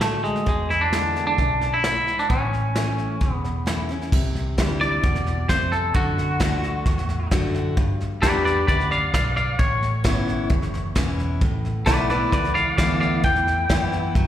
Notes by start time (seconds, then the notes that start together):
Already playing: A1 A2
0.01 D3 A3 D4 F#4, snare, hi-hat pedal
0.24 G#3, snare
0.36 snare
0.46 E2 G#3, kick, snare
0.70 E4, snare
0.81 D4
0.93 D3 G#3 B3 E4, snare, hi-hat pedal
1.16 snare
1.27 D4
1.38 B1 F#2, kick, snare
1.61 snare
1.74 E4
1.84 G#2 E4, snare, hi-hat pedal
2.07 snare
2.19 D4, snare
2.30 A1 A2 C#4, kick, snare
2.53 snare
2.75 E3 A3 C#4 E4, snare, hi-hat pedal
2.98 snare
3.21 E1 E2, kick, snare
3.33 B3
3.44 snare
3.66 E3 A3 C#4 E4, snare, hi-hat pedal
3.89 C#4 E4, snare
4.01 snare
4.12 C2 C3, kick, snare, crash
4.35 snare
4.58 D2 E3 G3 D4 E4, kick, snare, hi-hat pedal
4.81 D4 E4 D5, snare
5.03 E2 B2, kick, snare
5.15 snare
5.26 snare
5.49 F2 C3 C5, kick, snare, hi-hat pedal
5.72 A4, snare
5.94 F#2 D3 F#4, kick, snare
6.18 snare
6.40 D2 D3 A3 D4 F#4, kick, snare, hi-hat pedal
6.63 snare
6.86 E2 A2, kick, snare
6.98 snare
7.09 snare
7.31 F#2 D3 A3 D4 F#4, kick, snare, hi-hat pedal
7.54 snare
7.77 G2, kick, snare
8.00 snare
8.22 E2 G3 B3 D4 G4 B4 D5, kick, snare, hi-hat pedal
8.45 B4 D5, snare
8.67 D2 F#2 B4 D5, kick, snare
8.80 snare
8.91 D5 F5, snare
9.14 B1 G2 D5 F5, kick, snare, hi-hat pedal
9.36 D5 F5, snare
9.59 A1 A2 C#5, kick, snare
9.82 snare
10.04 G1 E3 B3 C#4 E4, kick, snare, hi-hat pedal
10.28 snare
10.50 F#1 E2, kick, snare
10.62 snare
10.74 snare
10.95 E1 E3 B3 C#4 E4, kick, snare, hi-hat pedal
11.19 snare
11.41 A1 A2 A3 B3 E4, kick, snare
11.65 snare
11.86 B1 E3 A3 B3 E4 B4 D5, kick, snare, hi-hat pedal
12.10 B3 E4 B4 D5, snare
12.32 C#2 E2 B4 D5, kick, snare
12.44 snare
12.54 D5 F5, snare
12.77 D2 E3 A3 B3 E4 D5 F5, kick, snare, hi-hat pedal
13.00 D5 F5, snare
13.23 E2 E3 B4 G5, kick, snare
13.36 snare
13.47 snare
13.69 F#2 E3 B3 E4, kick, snare, hi-hat pedal
13.92 snare
14.15 G2 F#3, kick, snare